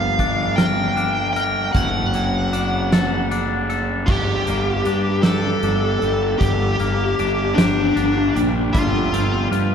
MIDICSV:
0, 0, Header, 1, 6, 480
1, 0, Start_track
1, 0, Key_signature, -2, "minor"
1, 0, Tempo, 778210
1, 1076, Time_signature, 6, 3, 24, 8
1, 6013, End_track
2, 0, Start_track
2, 0, Title_t, "Lead electric guitar"
2, 0, Program_c, 0, 29
2, 0, Note_on_c, 0, 77, 87
2, 344, Note_on_c, 0, 79, 89
2, 368, Note_off_c, 0, 77, 0
2, 814, Note_off_c, 0, 79, 0
2, 821, Note_on_c, 0, 79, 77
2, 1062, Note_off_c, 0, 79, 0
2, 1064, Note_on_c, 0, 78, 80
2, 2005, Note_off_c, 0, 78, 0
2, 2505, Note_on_c, 0, 67, 79
2, 3220, Note_on_c, 0, 69, 82
2, 3251, Note_off_c, 0, 67, 0
2, 3938, Note_on_c, 0, 67, 92
2, 3969, Note_off_c, 0, 69, 0
2, 4652, Note_on_c, 0, 62, 73
2, 4687, Note_off_c, 0, 67, 0
2, 5177, Note_off_c, 0, 62, 0
2, 5383, Note_on_c, 0, 65, 71
2, 5842, Note_off_c, 0, 65, 0
2, 6013, End_track
3, 0, Start_track
3, 0, Title_t, "Clean electric guitar"
3, 0, Program_c, 1, 27
3, 0, Note_on_c, 1, 43, 50
3, 0, Note_on_c, 1, 53, 59
3, 0, Note_on_c, 1, 62, 48
3, 118, Note_off_c, 1, 62, 0
3, 120, Note_on_c, 1, 62, 55
3, 358, Note_on_c, 1, 70, 63
3, 595, Note_off_c, 1, 62, 0
3, 597, Note_on_c, 1, 62, 57
3, 834, Note_off_c, 1, 43, 0
3, 834, Note_off_c, 1, 70, 0
3, 841, Note_on_c, 1, 70, 65
3, 1077, Note_off_c, 1, 53, 0
3, 1078, Note_off_c, 1, 70, 0
3, 1083, Note_on_c, 1, 54, 54
3, 1317, Note_off_c, 1, 54, 0
3, 1325, Note_on_c, 1, 54, 54
3, 1557, Note_off_c, 1, 62, 0
3, 1560, Note_on_c, 1, 62, 61
3, 1806, Note_on_c, 1, 69, 61
3, 2036, Note_off_c, 1, 62, 0
3, 2043, Note_on_c, 1, 62, 57
3, 2272, Note_off_c, 1, 69, 0
3, 2280, Note_on_c, 1, 69, 59
3, 2517, Note_off_c, 1, 69, 0
3, 2519, Note_off_c, 1, 62, 0
3, 2520, Note_off_c, 1, 54, 0
3, 2521, Note_on_c, 1, 43, 51
3, 2763, Note_on_c, 1, 58, 53
3, 2999, Note_on_c, 1, 62, 55
3, 3238, Note_on_c, 1, 67, 56
3, 3471, Note_off_c, 1, 62, 0
3, 3478, Note_on_c, 1, 62, 56
3, 3717, Note_off_c, 1, 43, 0
3, 3722, Note_on_c, 1, 55, 57
3, 3956, Note_on_c, 1, 43, 57
3, 3958, Note_off_c, 1, 58, 0
3, 4194, Note_on_c, 1, 58, 57
3, 4431, Note_off_c, 1, 62, 0
3, 4435, Note_off_c, 1, 67, 0
3, 4438, Note_on_c, 1, 62, 61
3, 4677, Note_on_c, 1, 67, 70
3, 4903, Note_off_c, 1, 62, 0
3, 4910, Note_on_c, 1, 62, 51
3, 4917, Note_off_c, 1, 55, 0
3, 5153, Note_off_c, 1, 43, 0
3, 5154, Note_on_c, 1, 55, 59
3, 5386, Note_off_c, 1, 55, 0
3, 5391, Note_off_c, 1, 62, 0
3, 5392, Note_off_c, 1, 58, 0
3, 5393, Note_on_c, 1, 55, 67
3, 5394, Note_off_c, 1, 67, 0
3, 5635, Note_on_c, 1, 60, 58
3, 5870, Note_on_c, 1, 65, 55
3, 6013, Note_off_c, 1, 55, 0
3, 6013, Note_off_c, 1, 60, 0
3, 6013, Note_off_c, 1, 65, 0
3, 6013, End_track
4, 0, Start_track
4, 0, Title_t, "Pedal steel guitar"
4, 0, Program_c, 2, 26
4, 0, Note_on_c, 2, 50, 46
4, 0, Note_on_c, 2, 55, 46
4, 0, Note_on_c, 2, 58, 49
4, 0, Note_on_c, 2, 65, 38
4, 0, Note_on_c, 2, 70, 65
4, 1050, Note_off_c, 2, 65, 0
4, 1062, Note_off_c, 2, 70, 0
4, 1064, Note_off_c, 2, 55, 0
4, 1064, Note_off_c, 2, 58, 0
4, 1081, Note_on_c, 2, 57, 50
4, 1082, Note_on_c, 2, 60, 52
4, 1084, Note_on_c, 2, 66, 54
4, 1084, Note_on_c, 2, 69, 57
4, 2490, Note_off_c, 2, 50, 0
4, 2503, Note_off_c, 2, 66, 0
4, 2504, Note_off_c, 2, 57, 0
4, 2504, Note_off_c, 2, 60, 0
4, 2505, Note_off_c, 2, 69, 0
4, 5394, Note_on_c, 2, 48, 55
4, 5394, Note_on_c, 2, 57, 52
4, 5396, Note_on_c, 2, 69, 64
4, 5397, Note_on_c, 2, 65, 52
4, 5399, Note_on_c, 2, 53, 49
4, 6013, Note_off_c, 2, 48, 0
4, 6013, Note_off_c, 2, 53, 0
4, 6013, Note_off_c, 2, 57, 0
4, 6013, Note_off_c, 2, 65, 0
4, 6013, Note_off_c, 2, 69, 0
4, 6013, End_track
5, 0, Start_track
5, 0, Title_t, "Fingered electric bass"
5, 0, Program_c, 3, 33
5, 0, Note_on_c, 3, 31, 68
5, 1051, Note_off_c, 3, 31, 0
5, 1076, Note_on_c, 3, 30, 67
5, 2517, Note_off_c, 3, 30, 0
5, 2517, Note_on_c, 3, 31, 65
5, 2722, Note_off_c, 3, 31, 0
5, 2762, Note_on_c, 3, 31, 61
5, 2965, Note_off_c, 3, 31, 0
5, 2996, Note_on_c, 3, 43, 60
5, 3406, Note_off_c, 3, 43, 0
5, 3471, Note_on_c, 3, 31, 73
5, 3678, Note_off_c, 3, 31, 0
5, 3716, Note_on_c, 3, 31, 64
5, 3921, Note_off_c, 3, 31, 0
5, 3952, Note_on_c, 3, 31, 76
5, 4158, Note_off_c, 3, 31, 0
5, 4197, Note_on_c, 3, 31, 65
5, 4401, Note_off_c, 3, 31, 0
5, 4436, Note_on_c, 3, 31, 65
5, 4641, Note_off_c, 3, 31, 0
5, 4670, Note_on_c, 3, 31, 85
5, 4877, Note_off_c, 3, 31, 0
5, 4910, Note_on_c, 3, 31, 78
5, 5117, Note_off_c, 3, 31, 0
5, 5155, Note_on_c, 3, 34, 82
5, 5359, Note_off_c, 3, 34, 0
5, 5396, Note_on_c, 3, 31, 82
5, 5600, Note_off_c, 3, 31, 0
5, 5626, Note_on_c, 3, 31, 66
5, 5834, Note_off_c, 3, 31, 0
5, 5863, Note_on_c, 3, 43, 62
5, 6013, Note_off_c, 3, 43, 0
5, 6013, End_track
6, 0, Start_track
6, 0, Title_t, "Drums"
6, 118, Note_on_c, 9, 36, 62
6, 118, Note_on_c, 9, 42, 44
6, 179, Note_off_c, 9, 36, 0
6, 180, Note_off_c, 9, 42, 0
6, 358, Note_on_c, 9, 38, 78
6, 358, Note_on_c, 9, 42, 60
6, 419, Note_off_c, 9, 38, 0
6, 419, Note_off_c, 9, 42, 0
6, 599, Note_on_c, 9, 42, 45
6, 661, Note_off_c, 9, 42, 0
6, 840, Note_on_c, 9, 42, 41
6, 902, Note_off_c, 9, 42, 0
6, 1077, Note_on_c, 9, 42, 71
6, 1078, Note_on_c, 9, 36, 87
6, 1138, Note_off_c, 9, 42, 0
6, 1139, Note_off_c, 9, 36, 0
6, 1317, Note_on_c, 9, 42, 50
6, 1379, Note_off_c, 9, 42, 0
6, 1562, Note_on_c, 9, 42, 55
6, 1624, Note_off_c, 9, 42, 0
6, 1804, Note_on_c, 9, 38, 81
6, 1804, Note_on_c, 9, 42, 68
6, 1865, Note_off_c, 9, 38, 0
6, 1865, Note_off_c, 9, 42, 0
6, 2044, Note_on_c, 9, 42, 48
6, 2106, Note_off_c, 9, 42, 0
6, 2281, Note_on_c, 9, 42, 42
6, 2342, Note_off_c, 9, 42, 0
6, 2516, Note_on_c, 9, 36, 95
6, 2516, Note_on_c, 9, 49, 76
6, 2578, Note_off_c, 9, 36, 0
6, 2578, Note_off_c, 9, 49, 0
6, 2757, Note_on_c, 9, 42, 55
6, 2819, Note_off_c, 9, 42, 0
6, 2994, Note_on_c, 9, 42, 48
6, 3056, Note_off_c, 9, 42, 0
6, 3227, Note_on_c, 9, 38, 81
6, 3227, Note_on_c, 9, 42, 61
6, 3289, Note_off_c, 9, 38, 0
6, 3289, Note_off_c, 9, 42, 0
6, 3471, Note_on_c, 9, 42, 43
6, 3533, Note_off_c, 9, 42, 0
6, 3713, Note_on_c, 9, 42, 40
6, 3774, Note_off_c, 9, 42, 0
6, 3952, Note_on_c, 9, 42, 63
6, 3953, Note_on_c, 9, 36, 84
6, 4013, Note_off_c, 9, 42, 0
6, 4015, Note_off_c, 9, 36, 0
6, 4192, Note_on_c, 9, 42, 45
6, 4254, Note_off_c, 9, 42, 0
6, 4435, Note_on_c, 9, 42, 46
6, 4497, Note_off_c, 9, 42, 0
6, 4676, Note_on_c, 9, 38, 87
6, 4676, Note_on_c, 9, 42, 72
6, 4737, Note_off_c, 9, 38, 0
6, 4737, Note_off_c, 9, 42, 0
6, 4915, Note_on_c, 9, 42, 49
6, 4977, Note_off_c, 9, 42, 0
6, 5159, Note_on_c, 9, 42, 50
6, 5221, Note_off_c, 9, 42, 0
6, 5394, Note_on_c, 9, 36, 95
6, 5397, Note_on_c, 9, 42, 75
6, 5456, Note_off_c, 9, 36, 0
6, 5458, Note_off_c, 9, 42, 0
6, 5636, Note_on_c, 9, 42, 59
6, 5698, Note_off_c, 9, 42, 0
6, 5876, Note_on_c, 9, 42, 52
6, 5937, Note_off_c, 9, 42, 0
6, 6013, End_track
0, 0, End_of_file